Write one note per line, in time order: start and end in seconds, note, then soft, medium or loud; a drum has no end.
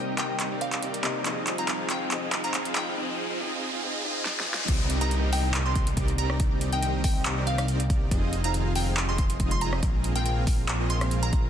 0.00 1.03 C3 loud
0.00 1.22 G3 medium
0.00 1.04 A#3 medium
0.00 0.16 C4 medium
0.00 1.22 C4 medium
0.00 0.16 D#4 medium
0.00 2.93 D#4 medium
0.00 0.16 G4 medium
0.00 0.16 A#4 medium
0.00 1.22 A#4 medium
0.00 1.04 D5 medium
0.00 0.16 D#5 loud
0.00 1.05 D#5 loud
0.00 1.22 D6 medium
0.00 riser medium
0.18 0.48 C4 medium
0.18 0.48 D#4 medium
0.18 0.48 G4 medium
0.18 0.48 A#4 medium
0.18 0.48 D#5 medium
0.18 0.51 G5 medium
0.18 clap medium
0.18 closed hi-hat medium
0.40 clap medium
0.40 closed hi-hat medium
0.51 0.80 C4 medium
0.51 0.80 D#4 medium
0.51 0.80 G4 medium
0.51 0.80 A#4 medium
0.51 0.80 D5 medium
0.61 0.69 F5 medium
0.61 closed hi-hat medium
0.73 0.79 F5 medium
0.73 clap medium
0.73 closed hi-hat medium
0.82 1.23 C4 medium
0.82 1.23 D#4 medium
0.82 1.23 G4 medium
0.82 1.23 A#4 medium
0.82 1.23 D5 medium
0.82 closed hi-hat medium
0.94 closed hi-hat medium
1.03 1.23 C3 loud
1.03 1.23 A#3 medium
1.03 1.23 D5 medium
1.03 1.24 D#5 loud
1.03 clap medium
1.03 closed hi-hat medium
1.24 2.08 F3 medium
1.24 2.95 F3 medium
1.24 2.09 C4 medium
1.24 1.56 C4 medium
1.24 2.95 C4 medium
1.24 1.56 D#4 medium
1.24 1.56 F4 medium
1.24 2.95 G#4 medium
1.24 1.56 G#4 medium
1.24 2.10 G#4 medium
1.24 2.95 C5 medium
1.24 1.56 D#5 medium
1.24 2.11 D#5 medium
1.24 clap medium
1.24 closed hi-hat medium
1.47 clap medium
1.47 closed hi-hat medium
1.58 1.87 C4 medium
1.58 1.87 D#4 medium
1.58 1.87 F4 medium
1.58 1.87 G#4 medium
1.58 1.87 F5 medium
1.58 1.68 A#5 medium
1.58 closed hi-hat medium
1.68 clap medium
1.68 closed hi-hat medium
1.90 2.10 C4 medium
1.90 2.10 D#4 medium
1.90 2.10 F4 medium
1.90 2.10 G#4 medium
1.90 2.10 F5 medium
1.90 2.00 G5 medium
1.90 clap medium
1.90 closed hi-hat medium
2.09 2.94 F3 medium
2.09 2.95 C4 medium
2.09 2.41 C4 medium
2.09 2.41 D#4 medium
2.09 2.41 F4 medium
2.09 2.41 G#4 medium
2.09 2.96 G#4 medium
2.09 2.41 D#5 medium
2.09 2.96 D#5 medium
2.09 clap medium
2.09 closed hi-hat medium
2.32 clap medium
2.32 closed hi-hat medium
2.44 2.73 C4 medium
2.44 2.73 D#4 medium
2.44 2.73 F4 medium
2.44 2.73 G#4 medium
2.44 2.73 F5 loud
2.44 2.53 A#5 medium
2.44 closed hi-hat medium
2.54 clap medium
2.54 closed hi-hat medium
2.65 closed hi-hat medium
2.75 2.95 C4 medium
2.75 2.95 D#4 medium
2.75 2.95 F4 medium
2.75 2.95 G#4 medium
2.75 2.95 F5 medium
2.75 2.86 G5 medium
2.75 clap medium
2.75 closed hi-hat medium
2.97 3.27 C4 medium
2.97 3.27 D#4 medium
2.97 3.27 F4 medium
2.97 3.27 G#4 medium
2.97 3.27 D#5 medium
3.30 3.38 C4 medium
3.30 3.38 D#4 medium
3.30 3.38 F4 medium
3.30 3.38 G#4 medium
3.30 3.38 F5 loud
3.40 3.70 C4 medium
3.40 3.70 D#4 medium
3.40 3.70 F4 medium
3.40 3.70 G#4 medium
3.40 3.70 D#5 medium
3.73 3.81 C4 medium
3.73 3.81 D#4 medium
3.73 3.81 F4 medium
3.73 3.81 G#4 medium
3.73 3.81 F5 loud
3.83 4.03 C4 medium
3.83 4.02 D#4 medium
3.83 4.03 F4 medium
3.83 4.03 G#4 medium
3.83 4.03 D#5 medium
4.04 4.24 C4 medium
4.04 4.24 D#4 medium
4.04 4.24 F4 medium
4.04 4.24 G#4 medium
4.04 4.24 D#5 medium
4.25 4.45 C4 medium
4.25 4.45 D#4 medium
4.25 4.45 F4 medium
4.25 4.45 G#4 medium
4.25 4.45 D#5 medium
4.25 snare medium
4.40 snare medium
4.47 4.67 C4 medium
4.47 4.67 D#4 medium
4.47 4.67 F4 medium
4.47 4.67 G#4 medium
4.47 4.67 D#5 medium
4.54 snare loud
4.68 8.09 C2 medium
4.68 9.79 D#3 medium
4.68 8.08 A#3 medium
4.68 4.98 C4 medium
4.68 8.08 C4 medium
4.68 4.98 D#4 medium
4.68 4.99 G4 medium
4.68 8.08 G4 medium
4.68 4.99 A#4 medium
4.68 4.99 D5 medium
4.68 8.08 D5 medium
4.68 kick loud
4.68 closed hi-hat medium
4.68 crash loud
4.68 downlifter medium
4.90 closed hi-hat medium
5.01 5.30 C4 loud
5.01 5.30 D#4 medium
5.01 5.30 G4 medium
5.01 5.30 A#4 medium
5.01 5.30 D#5 loud
5.01 5.10 A#5 medium
5.01 closed hi-hat medium
5.11 closed hi-hat medium
5.33 5.63 C4 medium
5.33 5.63 D#4 medium
5.33 5.63 G4 medium
5.33 5.63 A#4 medium
5.33 5.63 D#5 medium
5.33 5.43 G5 medium
5.33 open hi-hat medium
5.54 clap loud
5.54 closed hi-hat medium
5.65 5.95 C4 medium
5.65 5.95 D#4 medium
5.65 5.95 G4 medium
5.65 5.95 A#4 medium
5.65 5.95 D5 medium
5.65 5.72 C6 medium
5.75 5.83 C6 medium
5.75 kick loud
5.75 closed hi-hat medium
5.87 closed hi-hat medium
5.97 6.37 C4 medium
5.97 6.37 D#4 medium
5.97 6.37 G4 medium
5.97 6.37 A#4 medium
5.97 6.37 D5 loud
5.97 kick loud
5.97 closed hi-hat medium
6.08 closed hi-hat medium
6.18 6.29 A#5 medium
6.18 closed hi-hat medium
6.30 cross-stick medium
6.40 6.70 C4 medium
6.40 6.70 D#4 medium
6.40 6.70 G4 medium
6.40 6.70 A#4 medium
6.40 6.70 D5 medium
6.40 kick loud
6.40 closed hi-hat medium
6.61 closed hi-hat medium
6.73 7.02 C4 loud
6.73 7.02 D#4 medium
6.73 7.02 G4 medium
6.73 7.02 A#4 medium
6.73 7.02 D#5 loud
6.73 6.79 G5 medium
6.73 closed hi-hat medium
6.83 6.90 G5 medium
6.83 closed hi-hat medium
7.04 7.34 C4 medium
7.04 7.34 D#4 medium
7.04 7.34 G4 medium
7.04 7.34 A#4 medium
7.04 7.34 D#5 medium
7.04 7.37 G5 medium
7.04 kick loud
7.04 open hi-hat medium
7.25 clap loud
7.25 closed hi-hat medium
7.37 7.66 C4 medium
7.37 7.66 D#4 medium
7.37 7.66 G4 medium
7.37 7.66 A#4 medium
7.37 7.66 D5 medium
7.47 7.54 F5 medium
7.47 closed hi-hat medium
7.58 7.65 F5 medium
7.58 cross-stick medium
7.58 closed hi-hat medium
7.68 8.09 C4 medium
7.68 8.09 D#4 medium
7.68 8.09 G4 medium
7.68 8.09 A#4 medium
7.68 8.09 D5 medium
7.68 closed hi-hat medium
7.80 closed hi-hat medium
7.90 kick loud
7.90 closed hi-hat medium
8.11 9.81 F1 medium
8.11 11.50 F3 medium
8.11 11.50 G#3 medium
8.11 9.81 C4 medium
8.11 8.42 C4 medium
8.11 8.41 D#4 medium
8.11 9.81 F4 medium
8.11 8.41 F4 medium
8.11 8.41 G#4 medium
8.11 8.41 D#5 medium
8.11 kick loud
8.11 closed hi-hat medium
8.33 closed hi-hat medium
8.44 8.73 C4 medium
8.44 8.73 D#4 medium
8.44 8.73 F4 medium
8.44 8.73 G#4 medium
8.44 8.73 F5 loud
8.44 8.53 A#5 medium
8.44 closed hi-hat medium
8.54 closed hi-hat medium
8.76 9.06 C4 medium
8.76 9.06 D#4 medium
8.76 9.06 F4 medium
8.76 9.06 G#4 medium
8.76 9.06 F5 medium
8.76 8.86 G5 medium
8.76 open hi-hat medium
8.97 clap loud
8.97 closed hi-hat medium
9.08 9.38 C4 medium
9.08 9.38 D#4 medium
9.08 9.38 F4 medium
9.08 9.38 G#4 medium
9.08 9.38 D#5 medium
9.08 9.15 C6 medium
9.18 9.26 C6 medium
9.18 kick loud
9.18 closed hi-hat medium
9.30 closed hi-hat medium
9.40 9.80 C4 medium
9.40 9.80 D#4 medium
9.40 9.80 F4 medium
9.40 9.80 G#4 medium
9.40 9.80 D#5 loud
9.40 kick loud
9.40 closed hi-hat medium
9.51 9.59 C6 medium
9.51 closed hi-hat medium
9.61 9.72 A#5 medium
9.61 closed hi-hat medium
9.73 cross-stick medium
9.83 11.50 A#1 medium
9.83 11.50 C3 medium
9.83 11.50 A#3 medium
9.83 10.13 C4 medium
9.83 11.50 D#4 medium
9.83 10.13 F4 medium
9.83 10.13 G#4 medium
9.83 10.13 A#4 medium
9.83 10.13 D#5 medium
9.83 kick loud
9.83 closed hi-hat medium
10.04 closed hi-hat medium
10.16 10.45 C4 loud
10.16 10.45 F4 medium
10.16 10.45 G#4 medium
10.16 10.45 A#4 medium
10.16 10.45 F5 loud
10.16 10.22 G5 medium
10.16 closed hi-hat medium
10.26 10.33 G5 medium
10.26 closed hi-hat medium
10.47 10.77 C4 medium
10.47 10.77 F4 medium
10.47 10.77 G#4 medium
10.47 10.77 A#4 medium
10.47 10.77 F5 medium
10.47 kick loud
10.47 open hi-hat medium
10.69 clap loud
10.69 closed hi-hat medium
10.80 10.99 C4 medium
10.80 10.99 F4 medium
10.80 10.99 G#4 medium
10.80 10.99 A#4 medium
10.80 10.99 D#5 medium
10.90 11.00 C6 medium
10.90 closed hi-hat medium
11.01 11.30 C4 medium
11.01 11.30 F4 medium
11.01 11.30 G#4 medium
11.01 11.30 A#4 medium
11.01 11.30 F5 medium
11.01 cross-stick medium
11.01 closed hi-hat medium
11.11 closed hi-hat medium
11.23 11.50 A#5 medium
11.23 closed hi-hat medium
11.33 11.50 C4 medium
11.33 11.50 F4 medium
11.33 11.50 G#4 medium
11.33 11.50 A#4 medium
11.33 11.50 F5 loud
11.33 kick loud
11.33 closed hi-hat medium